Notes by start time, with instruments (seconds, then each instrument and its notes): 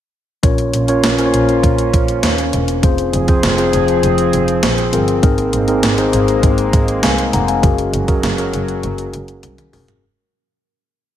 0.43 double bass A#1, analog synth pad A#3 C#4 F4, tine electric piano C#4 F4 A#4 C#5, kick, closed hi-hat
0.58 closed hi-hat
0.73 double bass A#1, closed hi-hat
0.88 tine electric piano C#4 F4 A#4 C#5, closed hi-hat
1.03 double bass A#1, snare, closed hi-hat
1.18 tine electric piano C#4 F4 A#4 C5, closed hi-hat
1.26 tine electric piano C#5
1.33 double bass A#1, closed hi-hat
1.49 closed hi-hat
1.63 double bass A#1, kick, closed hi-hat
1.78 closed hi-hat
1.94 double bass A#1, kick, closed hi-hat
2.08 closed hi-hat
2.23 double bass D#2, snare, closed hi-hat
2.38 closed hi-hat
2.53 double bass E1, closed hi-hat
2.68 closed hi-hat
2.82 double bass F1, analog synth pad F3 C4 G#4, tine electric piano C4 F4 G#4 C5, kick, closed hi-hat
2.98 closed hi-hat
3.13 double bass F1, closed hi-hat
3.28 tine electric piano C4 F4 G#4 C5, kick, closed hi-hat
3.43 double bass F1, snare, closed hi-hat
3.58 tine electric piano C4 F4 G#4 C5, closed hi-hat
3.73 double bass F1, closed hi-hat
3.88 closed hi-hat
4.03 double bass F1, closed hi-hat
4.18 closed hi-hat
4.33 double bass F1, closed hi-hat
4.48 closed hi-hat
4.63 double bass A#1, snare, closed hi-hat
4.78 closed hi-hat
4.92 double bass G1, tine electric piano C4 F4 G#4 A#4, closed hi-hat
5.08 closed hi-hat
5.22 double bass G#1, analog synth pad G#3 A#3, tine electric piano C4 D#4 G#4 A#4, kick, closed hi-hat
5.38 closed hi-hat
5.53 double bass G#1, closed hi-hat
5.67 tine electric piano C4 D#4 G#4 A#4, closed hi-hat
5.83 double bass G#1, snare, closed hi-hat
5.97 tine electric piano C4 D#4 G#4 C5, closed hi-hat
6.13 double bass G#1, closed hi-hat
6.28 closed hi-hat
6.43 double bass G#1, kick, closed hi-hat
6.58 closed hi-hat
6.73 double bass G#1, kick, closed hi-hat
6.88 closed hi-hat
7.03 double bass C2, tine electric piano F5 G#5, snare, closed hi-hat
7.18 closed hi-hat
7.33 double bass F1, tine electric piano F#5 A#5, closed hi-hat
7.48 tine electric piano F5 G#5, closed hi-hat
7.62 double bass F#1, analog synth pad F#3, tine electric piano C#4 F#4 G#4 A#4, kick, closed hi-hat
7.78 closed hi-hat
7.93 double bass F#1, closed hi-hat
8.07 tine electric piano C#4 F#4 G#4 A#4, kick, closed hi-hat
8.23 double bass F#1, snare, closed hi-hat
8.37 tine electric piano C#4 F#4 G#4 A#4, closed hi-hat
8.53 double bass F#1, closed hi-hat
8.68 closed hi-hat
8.83 double bass F#1, closed hi-hat
8.98 closed hi-hat
9.13 double bass F#1, closed hi-hat
9.28 closed hi-hat
9.43 double bass C2, closed hi-hat, high tom
9.58 closed hi-hat, mid tom
9.73 double bass F1, tine electric piano C#4 F#4 G#4 A#4, mid tom, open hi-hat
9.88 closed hi-hat, floor tom